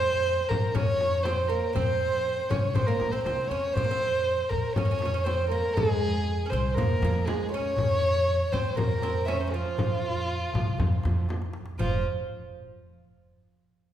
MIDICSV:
0, 0, Header, 1, 6, 480
1, 0, Start_track
1, 0, Key_signature, -4, "minor"
1, 0, Tempo, 502092
1, 1682, Time_signature, 4, 2, 24, 8
1, 13319, End_track
2, 0, Start_track
2, 0, Title_t, "Violin"
2, 0, Program_c, 0, 40
2, 0, Note_on_c, 0, 72, 112
2, 464, Note_on_c, 0, 70, 80
2, 479, Note_off_c, 0, 72, 0
2, 713, Note_on_c, 0, 73, 105
2, 728, Note_off_c, 0, 70, 0
2, 1173, Note_on_c, 0, 72, 86
2, 1187, Note_off_c, 0, 73, 0
2, 1417, Note_on_c, 0, 70, 80
2, 1431, Note_off_c, 0, 72, 0
2, 1669, Note_off_c, 0, 70, 0
2, 1674, Note_on_c, 0, 72, 100
2, 2384, Note_on_c, 0, 73, 78
2, 2398, Note_off_c, 0, 72, 0
2, 2621, Note_on_c, 0, 72, 77
2, 2635, Note_off_c, 0, 73, 0
2, 2737, Note_on_c, 0, 70, 81
2, 2751, Note_off_c, 0, 72, 0
2, 2974, Note_on_c, 0, 72, 78
2, 2989, Note_off_c, 0, 70, 0
2, 3080, Note_off_c, 0, 72, 0
2, 3086, Note_on_c, 0, 72, 76
2, 3320, Note_on_c, 0, 73, 87
2, 3335, Note_off_c, 0, 72, 0
2, 3567, Note_on_c, 0, 72, 99
2, 3581, Note_off_c, 0, 73, 0
2, 4290, Note_on_c, 0, 70, 75
2, 4305, Note_off_c, 0, 72, 0
2, 4522, Note_on_c, 0, 73, 90
2, 4536, Note_off_c, 0, 70, 0
2, 5004, Note_on_c, 0, 72, 81
2, 5019, Note_off_c, 0, 73, 0
2, 5243, Note_off_c, 0, 72, 0
2, 5248, Note_on_c, 0, 70, 82
2, 5484, Note_on_c, 0, 68, 95
2, 5498, Note_off_c, 0, 70, 0
2, 6210, Note_on_c, 0, 72, 73
2, 6224, Note_off_c, 0, 68, 0
2, 6446, Note_on_c, 0, 70, 80
2, 6461, Note_off_c, 0, 72, 0
2, 6933, Note_on_c, 0, 68, 70
2, 6947, Note_off_c, 0, 70, 0
2, 7173, Note_off_c, 0, 68, 0
2, 7178, Note_on_c, 0, 73, 103
2, 8139, Note_on_c, 0, 72, 78
2, 8154, Note_off_c, 0, 73, 0
2, 8370, Note_on_c, 0, 70, 84
2, 8384, Note_off_c, 0, 72, 0
2, 8843, Note_on_c, 0, 76, 63
2, 8857, Note_on_c, 0, 73, 81
2, 8858, Note_off_c, 0, 70, 0
2, 8871, Note_off_c, 0, 76, 0
2, 8986, Note_on_c, 0, 72, 76
2, 9000, Note_off_c, 0, 73, 0
2, 9104, Note_on_c, 0, 65, 82
2, 9118, Note_off_c, 0, 72, 0
2, 10791, Note_off_c, 0, 65, 0
2, 11273, Note_on_c, 0, 65, 74
2, 11499, Note_off_c, 0, 65, 0
2, 13319, End_track
3, 0, Start_track
3, 0, Title_t, "Oud"
3, 0, Program_c, 1, 24
3, 0, Note_on_c, 1, 60, 82
3, 710, Note_off_c, 1, 60, 0
3, 714, Note_on_c, 1, 61, 72
3, 1196, Note_off_c, 1, 61, 0
3, 1200, Note_on_c, 1, 60, 75
3, 1430, Note_on_c, 1, 58, 64
3, 1448, Note_off_c, 1, 60, 0
3, 1679, Note_on_c, 1, 60, 73
3, 1683, Note_off_c, 1, 58, 0
3, 2392, Note_off_c, 1, 60, 0
3, 2396, Note_on_c, 1, 61, 64
3, 2629, Note_off_c, 1, 61, 0
3, 2633, Note_on_c, 1, 60, 68
3, 2753, Note_on_c, 1, 58, 70
3, 2760, Note_off_c, 1, 60, 0
3, 2989, Note_on_c, 1, 60, 65
3, 3004, Note_off_c, 1, 58, 0
3, 3109, Note_off_c, 1, 60, 0
3, 3121, Note_on_c, 1, 60, 65
3, 3343, Note_off_c, 1, 60, 0
3, 3357, Note_on_c, 1, 61, 70
3, 3602, Note_off_c, 1, 61, 0
3, 3606, Note_on_c, 1, 60, 69
3, 3665, Note_off_c, 1, 60, 0
3, 3673, Note_on_c, 1, 58, 55
3, 3736, Note_off_c, 1, 58, 0
3, 3737, Note_on_c, 1, 60, 73
3, 4522, Note_off_c, 1, 60, 0
3, 4564, Note_on_c, 1, 61, 68
3, 4627, Note_off_c, 1, 61, 0
3, 4638, Note_on_c, 1, 61, 51
3, 4683, Note_off_c, 1, 61, 0
3, 4694, Note_on_c, 1, 61, 58
3, 4756, Note_off_c, 1, 61, 0
3, 4767, Note_on_c, 1, 61, 51
3, 4821, Note_off_c, 1, 61, 0
3, 4832, Note_on_c, 1, 61, 63
3, 4904, Note_off_c, 1, 61, 0
3, 4915, Note_on_c, 1, 61, 55
3, 4989, Note_off_c, 1, 61, 0
3, 5030, Note_on_c, 1, 60, 75
3, 5272, Note_on_c, 1, 58, 61
3, 5281, Note_off_c, 1, 60, 0
3, 5512, Note_off_c, 1, 58, 0
3, 5515, Note_on_c, 1, 56, 64
3, 6174, Note_on_c, 1, 61, 56
3, 6196, Note_off_c, 1, 56, 0
3, 6236, Note_off_c, 1, 61, 0
3, 6243, Note_on_c, 1, 60, 73
3, 6482, Note_on_c, 1, 58, 71
3, 6487, Note_off_c, 1, 60, 0
3, 6723, Note_off_c, 1, 58, 0
3, 6735, Note_on_c, 1, 58, 70
3, 6949, Note_off_c, 1, 58, 0
3, 6953, Note_on_c, 1, 56, 69
3, 7178, Note_off_c, 1, 56, 0
3, 7208, Note_on_c, 1, 61, 74
3, 8154, Note_off_c, 1, 61, 0
3, 8158, Note_on_c, 1, 60, 71
3, 8385, Note_on_c, 1, 58, 62
3, 8404, Note_off_c, 1, 60, 0
3, 8633, Note_on_c, 1, 60, 65
3, 8638, Note_off_c, 1, 58, 0
3, 8869, Note_off_c, 1, 60, 0
3, 8873, Note_on_c, 1, 61, 75
3, 9120, Note_on_c, 1, 53, 59
3, 9122, Note_off_c, 1, 61, 0
3, 10761, Note_off_c, 1, 53, 0
3, 11274, Note_on_c, 1, 53, 78
3, 11499, Note_off_c, 1, 53, 0
3, 13319, End_track
4, 0, Start_track
4, 0, Title_t, "Upright bass"
4, 0, Program_c, 2, 32
4, 0, Note_on_c, 2, 41, 92
4, 365, Note_off_c, 2, 41, 0
4, 485, Note_on_c, 2, 41, 93
4, 584, Note_off_c, 2, 41, 0
4, 713, Note_on_c, 2, 41, 88
4, 1521, Note_off_c, 2, 41, 0
4, 1680, Note_on_c, 2, 41, 74
4, 2283, Note_off_c, 2, 41, 0
4, 2405, Note_on_c, 2, 36, 80
4, 2604, Note_off_c, 2, 36, 0
4, 2634, Note_on_c, 2, 41, 75
4, 2838, Note_off_c, 2, 41, 0
4, 2877, Note_on_c, 2, 34, 77
4, 3094, Note_off_c, 2, 34, 0
4, 3115, Note_on_c, 2, 36, 67
4, 3333, Note_off_c, 2, 36, 0
4, 3349, Note_on_c, 2, 40, 70
4, 3570, Note_off_c, 2, 40, 0
4, 3590, Note_on_c, 2, 41, 85
4, 4197, Note_off_c, 2, 41, 0
4, 4318, Note_on_c, 2, 41, 80
4, 4419, Note_off_c, 2, 41, 0
4, 4554, Note_on_c, 2, 41, 97
4, 5359, Note_off_c, 2, 41, 0
4, 5516, Note_on_c, 2, 41, 80
4, 6119, Note_off_c, 2, 41, 0
4, 6231, Note_on_c, 2, 36, 81
4, 6434, Note_off_c, 2, 36, 0
4, 6473, Note_on_c, 2, 41, 87
4, 6675, Note_off_c, 2, 41, 0
4, 6712, Note_on_c, 2, 41, 105
4, 6915, Note_off_c, 2, 41, 0
4, 7439, Note_on_c, 2, 41, 89
4, 8041, Note_off_c, 2, 41, 0
4, 8158, Note_on_c, 2, 41, 78
4, 8257, Note_off_c, 2, 41, 0
4, 8396, Note_on_c, 2, 41, 83
4, 9200, Note_off_c, 2, 41, 0
4, 9360, Note_on_c, 2, 41, 82
4, 9962, Note_off_c, 2, 41, 0
4, 10077, Note_on_c, 2, 36, 72
4, 10278, Note_off_c, 2, 36, 0
4, 10318, Note_on_c, 2, 41, 82
4, 10519, Note_off_c, 2, 41, 0
4, 10563, Note_on_c, 2, 41, 89
4, 10762, Note_off_c, 2, 41, 0
4, 11279, Note_on_c, 2, 29, 78
4, 11502, Note_off_c, 2, 29, 0
4, 13319, End_track
5, 0, Start_track
5, 0, Title_t, "Darbuka"
5, 232, Note_on_c, 9, 62, 29
5, 327, Note_off_c, 9, 62, 0
5, 480, Note_on_c, 9, 64, 85
5, 576, Note_off_c, 9, 64, 0
5, 603, Note_on_c, 9, 62, 26
5, 699, Note_off_c, 9, 62, 0
5, 721, Note_on_c, 9, 64, 87
5, 817, Note_off_c, 9, 64, 0
5, 1194, Note_on_c, 9, 63, 70
5, 1290, Note_off_c, 9, 63, 0
5, 1315, Note_on_c, 9, 62, 27
5, 1410, Note_off_c, 9, 62, 0
5, 1435, Note_on_c, 9, 62, 23
5, 1531, Note_off_c, 9, 62, 0
5, 1670, Note_on_c, 9, 64, 90
5, 1766, Note_off_c, 9, 64, 0
5, 1794, Note_on_c, 9, 62, 24
5, 1889, Note_off_c, 9, 62, 0
5, 1911, Note_on_c, 9, 62, 26
5, 2007, Note_off_c, 9, 62, 0
5, 2154, Note_on_c, 9, 62, 27
5, 2250, Note_off_c, 9, 62, 0
5, 2273, Note_on_c, 9, 62, 23
5, 2369, Note_off_c, 9, 62, 0
5, 2390, Note_on_c, 9, 64, 74
5, 2486, Note_off_c, 9, 64, 0
5, 2509, Note_on_c, 9, 62, 27
5, 2605, Note_off_c, 9, 62, 0
5, 2625, Note_on_c, 9, 64, 85
5, 2720, Note_off_c, 9, 64, 0
5, 2866, Note_on_c, 9, 63, 64
5, 2961, Note_off_c, 9, 63, 0
5, 3105, Note_on_c, 9, 63, 57
5, 3201, Note_off_c, 9, 63, 0
5, 3232, Note_on_c, 9, 62, 24
5, 3327, Note_off_c, 9, 62, 0
5, 3591, Note_on_c, 9, 64, 84
5, 3687, Note_off_c, 9, 64, 0
5, 4073, Note_on_c, 9, 62, 23
5, 4169, Note_off_c, 9, 62, 0
5, 4189, Note_on_c, 9, 62, 21
5, 4285, Note_off_c, 9, 62, 0
5, 4306, Note_on_c, 9, 64, 79
5, 4402, Note_off_c, 9, 64, 0
5, 4427, Note_on_c, 9, 62, 23
5, 4522, Note_off_c, 9, 62, 0
5, 4552, Note_on_c, 9, 64, 85
5, 4648, Note_off_c, 9, 64, 0
5, 4789, Note_on_c, 9, 63, 64
5, 4885, Note_off_c, 9, 63, 0
5, 5029, Note_on_c, 9, 63, 57
5, 5124, Note_off_c, 9, 63, 0
5, 5146, Note_on_c, 9, 62, 21
5, 5242, Note_off_c, 9, 62, 0
5, 5510, Note_on_c, 9, 64, 87
5, 5606, Note_off_c, 9, 64, 0
5, 5992, Note_on_c, 9, 62, 23
5, 6088, Note_off_c, 9, 62, 0
5, 6110, Note_on_c, 9, 62, 24
5, 6205, Note_off_c, 9, 62, 0
5, 6228, Note_on_c, 9, 64, 82
5, 6323, Note_off_c, 9, 64, 0
5, 6347, Note_on_c, 9, 62, 24
5, 6443, Note_off_c, 9, 62, 0
5, 6471, Note_on_c, 9, 64, 92
5, 6567, Note_off_c, 9, 64, 0
5, 6717, Note_on_c, 9, 63, 72
5, 6813, Note_off_c, 9, 63, 0
5, 6963, Note_on_c, 9, 63, 64
5, 7059, Note_off_c, 9, 63, 0
5, 7075, Note_on_c, 9, 62, 23
5, 7171, Note_off_c, 9, 62, 0
5, 7186, Note_on_c, 9, 62, 24
5, 7282, Note_off_c, 9, 62, 0
5, 7423, Note_on_c, 9, 64, 84
5, 7519, Note_off_c, 9, 64, 0
5, 7912, Note_on_c, 9, 62, 23
5, 8007, Note_off_c, 9, 62, 0
5, 8032, Note_on_c, 9, 62, 22
5, 8128, Note_off_c, 9, 62, 0
5, 8146, Note_on_c, 9, 64, 68
5, 8241, Note_off_c, 9, 64, 0
5, 8388, Note_on_c, 9, 64, 91
5, 8483, Note_off_c, 9, 64, 0
5, 8627, Note_on_c, 9, 63, 71
5, 8722, Note_off_c, 9, 63, 0
5, 8871, Note_on_c, 9, 63, 69
5, 8967, Note_off_c, 9, 63, 0
5, 9112, Note_on_c, 9, 62, 26
5, 9208, Note_off_c, 9, 62, 0
5, 9350, Note_on_c, 9, 64, 85
5, 9445, Note_off_c, 9, 64, 0
5, 9834, Note_on_c, 9, 62, 25
5, 9930, Note_off_c, 9, 62, 0
5, 9958, Note_on_c, 9, 62, 23
5, 10053, Note_off_c, 9, 62, 0
5, 10069, Note_on_c, 9, 64, 72
5, 10165, Note_off_c, 9, 64, 0
5, 10189, Note_on_c, 9, 62, 22
5, 10284, Note_off_c, 9, 62, 0
5, 10307, Note_on_c, 9, 64, 78
5, 10403, Note_off_c, 9, 64, 0
5, 10550, Note_on_c, 9, 63, 64
5, 10645, Note_off_c, 9, 63, 0
5, 10792, Note_on_c, 9, 63, 52
5, 10888, Note_off_c, 9, 63, 0
5, 10915, Note_on_c, 9, 62, 58
5, 11011, Note_off_c, 9, 62, 0
5, 11027, Note_on_c, 9, 63, 67
5, 11123, Note_off_c, 9, 63, 0
5, 11143, Note_on_c, 9, 62, 68
5, 11239, Note_off_c, 9, 62, 0
5, 11267, Note_on_c, 9, 64, 74
5, 11363, Note_off_c, 9, 64, 0
5, 13319, End_track
6, 0, Start_track
6, 0, Title_t, "Frame drum"
6, 486, Note_on_c, 9, 64, 81
6, 582, Note_off_c, 9, 64, 0
6, 721, Note_on_c, 9, 64, 78
6, 817, Note_off_c, 9, 64, 0
6, 963, Note_on_c, 9, 64, 57
6, 1059, Note_off_c, 9, 64, 0
6, 1197, Note_on_c, 9, 64, 66
6, 1293, Note_off_c, 9, 64, 0
6, 1676, Note_on_c, 9, 64, 76
6, 1772, Note_off_c, 9, 64, 0
6, 2397, Note_on_c, 9, 64, 78
6, 2493, Note_off_c, 9, 64, 0
6, 2634, Note_on_c, 9, 64, 81
6, 2729, Note_off_c, 9, 64, 0
6, 2880, Note_on_c, 9, 64, 55
6, 2976, Note_off_c, 9, 64, 0
6, 3116, Note_on_c, 9, 64, 59
6, 3211, Note_off_c, 9, 64, 0
6, 3600, Note_on_c, 9, 64, 75
6, 3695, Note_off_c, 9, 64, 0
6, 4551, Note_on_c, 9, 64, 89
6, 4646, Note_off_c, 9, 64, 0
6, 4800, Note_on_c, 9, 64, 61
6, 4895, Note_off_c, 9, 64, 0
6, 5040, Note_on_c, 9, 64, 64
6, 5135, Note_off_c, 9, 64, 0
6, 5520, Note_on_c, 9, 64, 89
6, 5616, Note_off_c, 9, 64, 0
6, 6481, Note_on_c, 9, 64, 80
6, 6577, Note_off_c, 9, 64, 0
6, 6718, Note_on_c, 9, 64, 63
6, 6814, Note_off_c, 9, 64, 0
6, 6958, Note_on_c, 9, 64, 73
6, 7053, Note_off_c, 9, 64, 0
6, 7440, Note_on_c, 9, 64, 72
6, 7536, Note_off_c, 9, 64, 0
6, 8152, Note_on_c, 9, 64, 73
6, 8247, Note_off_c, 9, 64, 0
6, 8394, Note_on_c, 9, 64, 81
6, 8489, Note_off_c, 9, 64, 0
6, 8638, Note_on_c, 9, 64, 56
6, 8734, Note_off_c, 9, 64, 0
6, 8877, Note_on_c, 9, 64, 61
6, 8973, Note_off_c, 9, 64, 0
6, 9357, Note_on_c, 9, 64, 86
6, 9452, Note_off_c, 9, 64, 0
6, 10085, Note_on_c, 9, 64, 83
6, 10181, Note_off_c, 9, 64, 0
6, 10321, Note_on_c, 9, 64, 80
6, 10417, Note_off_c, 9, 64, 0
6, 10566, Note_on_c, 9, 64, 60
6, 10662, Note_off_c, 9, 64, 0
6, 10805, Note_on_c, 9, 64, 68
6, 10901, Note_off_c, 9, 64, 0
6, 11285, Note_on_c, 9, 64, 66
6, 11380, Note_off_c, 9, 64, 0
6, 13319, End_track
0, 0, End_of_file